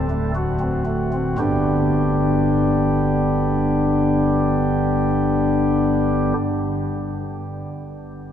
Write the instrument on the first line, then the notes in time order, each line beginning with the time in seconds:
pipe organ
Already playing: D1 D2 A4
0.10 A3
0.35 F#4
0.59 C4
0.85 A3
1.13 C4
1.38 G1 G2 D3 B3 D4 G4